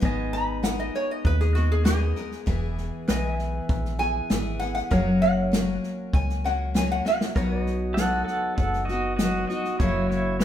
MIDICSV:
0, 0, Header, 1, 7, 480
1, 0, Start_track
1, 0, Key_signature, 5, "major"
1, 0, Tempo, 610998
1, 24, Time_signature, 4, 2, 24, 8
1, 8205, End_track
2, 0, Start_track
2, 0, Title_t, "Resonator guitar played with a steel bar"
2, 0, Program_c, 0, 25
2, 260, Note_on_c, 0, 83, 101
2, 494, Note_off_c, 0, 83, 0
2, 499, Note_on_c, 0, 78, 82
2, 618, Note_off_c, 0, 78, 0
2, 626, Note_on_c, 0, 75, 83
2, 741, Note_off_c, 0, 75, 0
2, 750, Note_on_c, 0, 73, 88
2, 863, Note_off_c, 0, 73, 0
2, 874, Note_on_c, 0, 75, 76
2, 985, Note_off_c, 0, 75, 0
2, 994, Note_on_c, 0, 71, 97
2, 1105, Note_off_c, 0, 71, 0
2, 1105, Note_on_c, 0, 68, 79
2, 1218, Note_on_c, 0, 66, 81
2, 1220, Note_off_c, 0, 68, 0
2, 1336, Note_off_c, 0, 66, 0
2, 1349, Note_on_c, 0, 68, 87
2, 1445, Note_off_c, 0, 68, 0
2, 1454, Note_on_c, 0, 68, 95
2, 2865, Note_off_c, 0, 68, 0
2, 3136, Note_on_c, 0, 80, 114
2, 3604, Note_off_c, 0, 80, 0
2, 3610, Note_on_c, 0, 78, 105
2, 3719, Note_off_c, 0, 78, 0
2, 3729, Note_on_c, 0, 78, 90
2, 4084, Note_off_c, 0, 78, 0
2, 4099, Note_on_c, 0, 78, 108
2, 4565, Note_off_c, 0, 78, 0
2, 4826, Note_on_c, 0, 80, 96
2, 5056, Note_off_c, 0, 80, 0
2, 5070, Note_on_c, 0, 78, 92
2, 5298, Note_off_c, 0, 78, 0
2, 5314, Note_on_c, 0, 80, 90
2, 5424, Note_off_c, 0, 80, 0
2, 5433, Note_on_c, 0, 78, 99
2, 5543, Note_off_c, 0, 78, 0
2, 5559, Note_on_c, 0, 78, 103
2, 5783, Note_off_c, 0, 78, 0
2, 8205, End_track
3, 0, Start_track
3, 0, Title_t, "Pedal steel guitar"
3, 0, Program_c, 1, 26
3, 40, Note_on_c, 1, 75, 68
3, 48, Note_on_c, 1, 80, 59
3, 1931, Note_off_c, 1, 75, 0
3, 1935, Note_off_c, 1, 80, 0
3, 2426, Note_on_c, 1, 71, 71
3, 2439, Note_on_c, 1, 75, 71
3, 2445, Note_on_c, 1, 80, 77
3, 2596, Note_off_c, 1, 75, 0
3, 2596, Note_on_c, 1, 76, 71
3, 3848, Note_off_c, 1, 71, 0
3, 3855, Note_off_c, 1, 76, 0
3, 3858, Note_off_c, 1, 80, 0
3, 3862, Note_on_c, 1, 70, 64
3, 3874, Note_on_c, 1, 73, 69
3, 3887, Note_on_c, 1, 78, 60
3, 5762, Note_off_c, 1, 70, 0
3, 5768, Note_off_c, 1, 73, 0
3, 5774, Note_off_c, 1, 78, 0
3, 5782, Note_on_c, 1, 70, 67
3, 5791, Note_on_c, 1, 73, 63
3, 5805, Note_on_c, 1, 78, 67
3, 5939, Note_off_c, 1, 70, 0
3, 5939, Note_on_c, 1, 71, 67
3, 5988, Note_off_c, 1, 73, 0
3, 5988, Note_on_c, 1, 75, 63
3, 7682, Note_off_c, 1, 71, 0
3, 7687, Note_off_c, 1, 75, 0
3, 7694, Note_off_c, 1, 78, 0
3, 8205, End_track
4, 0, Start_track
4, 0, Title_t, "Pedal steel guitar"
4, 0, Program_c, 2, 26
4, 6238, Note_on_c, 2, 69, 81
4, 6240, Note_on_c, 2, 78, 87
4, 6468, Note_off_c, 2, 69, 0
4, 6475, Note_off_c, 2, 78, 0
4, 6478, Note_on_c, 2, 69, 78
4, 6484, Note_on_c, 2, 78, 88
4, 6712, Note_off_c, 2, 69, 0
4, 6721, Note_off_c, 2, 78, 0
4, 6723, Note_on_c, 2, 69, 68
4, 6730, Note_on_c, 2, 78, 77
4, 6954, Note_off_c, 2, 69, 0
4, 6954, Note_on_c, 2, 75, 82
4, 6955, Note_on_c, 2, 66, 75
4, 6968, Note_off_c, 2, 78, 0
4, 7189, Note_off_c, 2, 66, 0
4, 7194, Note_off_c, 2, 75, 0
4, 7200, Note_on_c, 2, 66, 71
4, 7204, Note_on_c, 2, 75, 77
4, 7433, Note_off_c, 2, 66, 0
4, 7445, Note_off_c, 2, 75, 0
4, 7453, Note_on_c, 2, 75, 84
4, 7688, Note_off_c, 2, 75, 0
4, 7691, Note_on_c, 2, 64, 74
4, 7696, Note_on_c, 2, 73, 85
4, 7919, Note_off_c, 2, 64, 0
4, 7931, Note_off_c, 2, 73, 0
4, 7932, Note_on_c, 2, 64, 69
4, 7939, Note_on_c, 2, 73, 78
4, 8156, Note_off_c, 2, 64, 0
4, 8157, Note_off_c, 2, 73, 0
4, 8166, Note_on_c, 2, 73, 88
4, 8167, Note_on_c, 2, 64, 74
4, 8205, Note_off_c, 2, 64, 0
4, 8205, Note_off_c, 2, 73, 0
4, 8205, End_track
5, 0, Start_track
5, 0, Title_t, "Steel-string acoustic guitar"
5, 0, Program_c, 3, 25
5, 2, Note_on_c, 3, 44, 79
5, 10, Note_on_c, 3, 56, 83
5, 13, Note_on_c, 3, 51, 79
5, 15, Note_on_c, 3, 59, 97
5, 20, Note_on_c, 3, 63, 91
5, 488, Note_off_c, 3, 56, 0
5, 491, Note_on_c, 3, 56, 60
5, 492, Note_off_c, 3, 44, 0
5, 492, Note_off_c, 3, 59, 0
5, 494, Note_off_c, 3, 63, 0
5, 495, Note_on_c, 3, 59, 61
5, 498, Note_off_c, 3, 51, 0
5, 504, Note_on_c, 3, 63, 66
5, 509, Note_on_c, 3, 70, 64
5, 1210, Note_off_c, 3, 70, 0
5, 1214, Note_off_c, 3, 63, 0
5, 1217, Note_off_c, 3, 56, 0
5, 1218, Note_off_c, 3, 59, 0
5, 1220, Note_on_c, 3, 70, 56
5, 1224, Note_on_c, 3, 63, 57
5, 1231, Note_on_c, 3, 59, 54
5, 1239, Note_on_c, 3, 56, 49
5, 1439, Note_off_c, 3, 56, 0
5, 1449, Note_off_c, 3, 59, 0
5, 1449, Note_on_c, 3, 56, 62
5, 1456, Note_off_c, 3, 63, 0
5, 1456, Note_off_c, 3, 70, 0
5, 1458, Note_on_c, 3, 59, 62
5, 1465, Note_on_c, 3, 63, 66
5, 1466, Note_on_c, 3, 70, 71
5, 1689, Note_off_c, 3, 70, 0
5, 1695, Note_off_c, 3, 56, 0
5, 1698, Note_on_c, 3, 70, 53
5, 1700, Note_off_c, 3, 59, 0
5, 1700, Note_off_c, 3, 63, 0
5, 1709, Note_on_c, 3, 63, 51
5, 1717, Note_on_c, 3, 59, 49
5, 1721, Note_on_c, 3, 56, 46
5, 1929, Note_off_c, 3, 56, 0
5, 1929, Note_off_c, 3, 59, 0
5, 1932, Note_on_c, 3, 52, 72
5, 1939, Note_on_c, 3, 59, 84
5, 1940, Note_off_c, 3, 70, 0
5, 1941, Note_off_c, 3, 63, 0
5, 1944, Note_on_c, 3, 64, 85
5, 1947, Note_on_c, 3, 68, 82
5, 2407, Note_off_c, 3, 52, 0
5, 2416, Note_on_c, 3, 52, 69
5, 2418, Note_off_c, 3, 59, 0
5, 2419, Note_off_c, 3, 64, 0
5, 2424, Note_off_c, 3, 68, 0
5, 2427, Note_on_c, 3, 59, 74
5, 2428, Note_on_c, 3, 64, 68
5, 2439, Note_on_c, 3, 68, 73
5, 3123, Note_off_c, 3, 68, 0
5, 3132, Note_on_c, 3, 68, 59
5, 3135, Note_off_c, 3, 64, 0
5, 3138, Note_off_c, 3, 52, 0
5, 3138, Note_off_c, 3, 59, 0
5, 3145, Note_on_c, 3, 64, 55
5, 3147, Note_on_c, 3, 59, 46
5, 3372, Note_off_c, 3, 59, 0
5, 3375, Note_on_c, 3, 52, 60
5, 3377, Note_off_c, 3, 68, 0
5, 3380, Note_off_c, 3, 64, 0
5, 3381, Note_on_c, 3, 59, 66
5, 3389, Note_on_c, 3, 64, 64
5, 3394, Note_on_c, 3, 68, 76
5, 3607, Note_off_c, 3, 68, 0
5, 3614, Note_off_c, 3, 64, 0
5, 3617, Note_on_c, 3, 68, 60
5, 3618, Note_off_c, 3, 52, 0
5, 3621, Note_off_c, 3, 59, 0
5, 3623, Note_on_c, 3, 64, 49
5, 3636, Note_on_c, 3, 59, 47
5, 3853, Note_on_c, 3, 42, 77
5, 3855, Note_on_c, 3, 49, 91
5, 3858, Note_off_c, 3, 68, 0
5, 3860, Note_on_c, 3, 54, 84
5, 3861, Note_off_c, 3, 59, 0
5, 3861, Note_off_c, 3, 64, 0
5, 3864, Note_on_c, 3, 58, 80
5, 3865, Note_on_c, 3, 61, 84
5, 3869, Note_on_c, 3, 70, 85
5, 4324, Note_off_c, 3, 54, 0
5, 4333, Note_on_c, 3, 54, 65
5, 4335, Note_off_c, 3, 58, 0
5, 4336, Note_off_c, 3, 42, 0
5, 4337, Note_off_c, 3, 49, 0
5, 4339, Note_off_c, 3, 61, 0
5, 4344, Note_off_c, 3, 70, 0
5, 4344, Note_on_c, 3, 58, 59
5, 4349, Note_on_c, 3, 61, 62
5, 4358, Note_on_c, 3, 70, 70
5, 5052, Note_off_c, 3, 70, 0
5, 5057, Note_off_c, 3, 54, 0
5, 5062, Note_off_c, 3, 58, 0
5, 5062, Note_off_c, 3, 61, 0
5, 5062, Note_on_c, 3, 70, 58
5, 5071, Note_on_c, 3, 61, 54
5, 5081, Note_on_c, 3, 58, 55
5, 5082, Note_on_c, 3, 54, 48
5, 5289, Note_off_c, 3, 54, 0
5, 5298, Note_on_c, 3, 54, 64
5, 5299, Note_off_c, 3, 58, 0
5, 5301, Note_off_c, 3, 70, 0
5, 5303, Note_off_c, 3, 61, 0
5, 5309, Note_on_c, 3, 58, 62
5, 5313, Note_on_c, 3, 61, 69
5, 5320, Note_on_c, 3, 70, 70
5, 5528, Note_off_c, 3, 70, 0
5, 5537, Note_off_c, 3, 61, 0
5, 5537, Note_on_c, 3, 70, 48
5, 5539, Note_off_c, 3, 54, 0
5, 5539, Note_off_c, 3, 58, 0
5, 5546, Note_on_c, 3, 61, 57
5, 5549, Note_on_c, 3, 58, 47
5, 5554, Note_on_c, 3, 54, 45
5, 5779, Note_off_c, 3, 70, 0
5, 5780, Note_off_c, 3, 54, 0
5, 5783, Note_off_c, 3, 61, 0
5, 5783, Note_on_c, 3, 47, 74
5, 5784, Note_off_c, 3, 58, 0
5, 5788, Note_on_c, 3, 59, 74
5, 5790, Note_on_c, 3, 54, 80
5, 5793, Note_on_c, 3, 66, 73
5, 5796, Note_on_c, 3, 63, 81
5, 6262, Note_off_c, 3, 47, 0
5, 6262, Note_off_c, 3, 54, 0
5, 6264, Note_off_c, 3, 59, 0
5, 6265, Note_on_c, 3, 54, 51
5, 6268, Note_off_c, 3, 63, 0
5, 6274, Note_on_c, 3, 59, 64
5, 6280, Note_on_c, 3, 63, 60
5, 6284, Note_off_c, 3, 66, 0
5, 6287, Note_on_c, 3, 66, 61
5, 6979, Note_off_c, 3, 66, 0
5, 6983, Note_off_c, 3, 54, 0
5, 6987, Note_off_c, 3, 59, 0
5, 6988, Note_on_c, 3, 66, 53
5, 6990, Note_off_c, 3, 63, 0
5, 7002, Note_on_c, 3, 63, 53
5, 7013, Note_on_c, 3, 59, 49
5, 7211, Note_off_c, 3, 59, 0
5, 7221, Note_on_c, 3, 59, 63
5, 7222, Note_on_c, 3, 54, 65
5, 7224, Note_off_c, 3, 63, 0
5, 7224, Note_off_c, 3, 66, 0
5, 7234, Note_on_c, 3, 63, 70
5, 7240, Note_on_c, 3, 66, 66
5, 7451, Note_off_c, 3, 66, 0
5, 7461, Note_off_c, 3, 54, 0
5, 7461, Note_off_c, 3, 59, 0
5, 7461, Note_off_c, 3, 63, 0
5, 7461, Note_on_c, 3, 66, 53
5, 7471, Note_on_c, 3, 63, 54
5, 7479, Note_on_c, 3, 59, 45
5, 7699, Note_on_c, 3, 42, 77
5, 7701, Note_off_c, 3, 66, 0
5, 7703, Note_off_c, 3, 59, 0
5, 7703, Note_on_c, 3, 49, 74
5, 7705, Note_off_c, 3, 63, 0
5, 7707, Note_on_c, 3, 58, 78
5, 7708, Note_on_c, 3, 61, 89
5, 7709, Note_on_c, 3, 54, 85
5, 7714, Note_on_c, 3, 66, 87
5, 8165, Note_off_c, 3, 54, 0
5, 8173, Note_off_c, 3, 58, 0
5, 8175, Note_on_c, 3, 54, 62
5, 8180, Note_off_c, 3, 42, 0
5, 8182, Note_off_c, 3, 49, 0
5, 8187, Note_off_c, 3, 66, 0
5, 8189, Note_off_c, 3, 61, 0
5, 8205, Note_off_c, 3, 54, 0
5, 8205, End_track
6, 0, Start_track
6, 0, Title_t, "FM bass"
6, 0, Program_c, 4, 39
6, 20, Note_on_c, 4, 32, 87
6, 714, Note_off_c, 4, 32, 0
6, 979, Note_on_c, 4, 39, 99
6, 1674, Note_off_c, 4, 39, 0
6, 1942, Note_on_c, 4, 28, 88
6, 2289, Note_off_c, 4, 28, 0
6, 2431, Note_on_c, 4, 35, 88
6, 2835, Note_off_c, 4, 35, 0
6, 2902, Note_on_c, 4, 34, 87
6, 3309, Note_off_c, 4, 34, 0
6, 3387, Note_on_c, 4, 32, 77
6, 3792, Note_off_c, 4, 32, 0
6, 3860, Note_on_c, 4, 30, 92
6, 4554, Note_off_c, 4, 30, 0
6, 4818, Note_on_c, 4, 37, 87
6, 5512, Note_off_c, 4, 37, 0
6, 5781, Note_on_c, 4, 35, 82
6, 6475, Note_off_c, 4, 35, 0
6, 6742, Note_on_c, 4, 30, 95
6, 7435, Note_off_c, 4, 30, 0
6, 7696, Note_on_c, 4, 30, 90
6, 8205, Note_off_c, 4, 30, 0
6, 8205, End_track
7, 0, Start_track
7, 0, Title_t, "Drums"
7, 20, Note_on_c, 9, 36, 103
7, 21, Note_on_c, 9, 38, 33
7, 99, Note_off_c, 9, 36, 0
7, 100, Note_off_c, 9, 38, 0
7, 259, Note_on_c, 9, 38, 34
7, 338, Note_off_c, 9, 38, 0
7, 498, Note_on_c, 9, 38, 96
7, 498, Note_on_c, 9, 44, 78
7, 577, Note_off_c, 9, 38, 0
7, 577, Note_off_c, 9, 44, 0
7, 741, Note_on_c, 9, 38, 33
7, 819, Note_off_c, 9, 38, 0
7, 981, Note_on_c, 9, 36, 109
7, 981, Note_on_c, 9, 38, 35
7, 1059, Note_off_c, 9, 36, 0
7, 1059, Note_off_c, 9, 38, 0
7, 1102, Note_on_c, 9, 38, 33
7, 1180, Note_off_c, 9, 38, 0
7, 1221, Note_on_c, 9, 38, 37
7, 1299, Note_off_c, 9, 38, 0
7, 1457, Note_on_c, 9, 38, 117
7, 1457, Note_on_c, 9, 44, 92
7, 1536, Note_off_c, 9, 38, 0
7, 1536, Note_off_c, 9, 44, 0
7, 1697, Note_on_c, 9, 38, 35
7, 1776, Note_off_c, 9, 38, 0
7, 1819, Note_on_c, 9, 38, 33
7, 1898, Note_off_c, 9, 38, 0
7, 1939, Note_on_c, 9, 38, 34
7, 1941, Note_on_c, 9, 36, 100
7, 2018, Note_off_c, 9, 38, 0
7, 2019, Note_off_c, 9, 36, 0
7, 2182, Note_on_c, 9, 38, 33
7, 2260, Note_off_c, 9, 38, 0
7, 2422, Note_on_c, 9, 38, 109
7, 2422, Note_on_c, 9, 44, 71
7, 2500, Note_off_c, 9, 38, 0
7, 2500, Note_off_c, 9, 44, 0
7, 2661, Note_on_c, 9, 38, 34
7, 2739, Note_off_c, 9, 38, 0
7, 2901, Note_on_c, 9, 36, 111
7, 2901, Note_on_c, 9, 38, 35
7, 2980, Note_off_c, 9, 36, 0
7, 2980, Note_off_c, 9, 38, 0
7, 3025, Note_on_c, 9, 38, 36
7, 3104, Note_off_c, 9, 38, 0
7, 3141, Note_on_c, 9, 38, 35
7, 3219, Note_off_c, 9, 38, 0
7, 3380, Note_on_c, 9, 38, 121
7, 3380, Note_on_c, 9, 44, 84
7, 3458, Note_off_c, 9, 38, 0
7, 3458, Note_off_c, 9, 44, 0
7, 3620, Note_on_c, 9, 38, 41
7, 3699, Note_off_c, 9, 38, 0
7, 3742, Note_on_c, 9, 38, 32
7, 3820, Note_off_c, 9, 38, 0
7, 3860, Note_on_c, 9, 36, 101
7, 3862, Note_on_c, 9, 38, 37
7, 3939, Note_off_c, 9, 36, 0
7, 3941, Note_off_c, 9, 38, 0
7, 4104, Note_on_c, 9, 38, 33
7, 4183, Note_off_c, 9, 38, 0
7, 4344, Note_on_c, 9, 38, 111
7, 4344, Note_on_c, 9, 44, 80
7, 4423, Note_off_c, 9, 38, 0
7, 4423, Note_off_c, 9, 44, 0
7, 4584, Note_on_c, 9, 38, 34
7, 4662, Note_off_c, 9, 38, 0
7, 4820, Note_on_c, 9, 36, 111
7, 4821, Note_on_c, 9, 38, 39
7, 4898, Note_off_c, 9, 36, 0
7, 4900, Note_off_c, 9, 38, 0
7, 4945, Note_on_c, 9, 38, 38
7, 5023, Note_off_c, 9, 38, 0
7, 5065, Note_on_c, 9, 38, 40
7, 5144, Note_off_c, 9, 38, 0
7, 5303, Note_on_c, 9, 38, 123
7, 5303, Note_on_c, 9, 44, 86
7, 5381, Note_off_c, 9, 38, 0
7, 5381, Note_off_c, 9, 44, 0
7, 5542, Note_on_c, 9, 38, 66
7, 5621, Note_off_c, 9, 38, 0
7, 5664, Note_on_c, 9, 38, 98
7, 5742, Note_off_c, 9, 38, 0
7, 5780, Note_on_c, 9, 36, 98
7, 5783, Note_on_c, 9, 38, 35
7, 5859, Note_off_c, 9, 36, 0
7, 5861, Note_off_c, 9, 38, 0
7, 6021, Note_on_c, 9, 38, 34
7, 6100, Note_off_c, 9, 38, 0
7, 6262, Note_on_c, 9, 38, 100
7, 6262, Note_on_c, 9, 44, 77
7, 6340, Note_off_c, 9, 38, 0
7, 6340, Note_off_c, 9, 44, 0
7, 6501, Note_on_c, 9, 38, 34
7, 6579, Note_off_c, 9, 38, 0
7, 6738, Note_on_c, 9, 38, 35
7, 6739, Note_on_c, 9, 36, 107
7, 6817, Note_off_c, 9, 36, 0
7, 6817, Note_off_c, 9, 38, 0
7, 6861, Note_on_c, 9, 38, 36
7, 6939, Note_off_c, 9, 38, 0
7, 6978, Note_on_c, 9, 38, 35
7, 7056, Note_off_c, 9, 38, 0
7, 7217, Note_on_c, 9, 38, 112
7, 7217, Note_on_c, 9, 44, 85
7, 7296, Note_off_c, 9, 38, 0
7, 7296, Note_off_c, 9, 44, 0
7, 7459, Note_on_c, 9, 38, 40
7, 7538, Note_off_c, 9, 38, 0
7, 7578, Note_on_c, 9, 38, 36
7, 7656, Note_off_c, 9, 38, 0
7, 7696, Note_on_c, 9, 38, 35
7, 7698, Note_on_c, 9, 36, 111
7, 7775, Note_off_c, 9, 38, 0
7, 7776, Note_off_c, 9, 36, 0
7, 7939, Note_on_c, 9, 38, 36
7, 8018, Note_off_c, 9, 38, 0
7, 8172, Note_on_c, 9, 38, 104
7, 8172, Note_on_c, 9, 44, 81
7, 8205, Note_off_c, 9, 38, 0
7, 8205, Note_off_c, 9, 44, 0
7, 8205, End_track
0, 0, End_of_file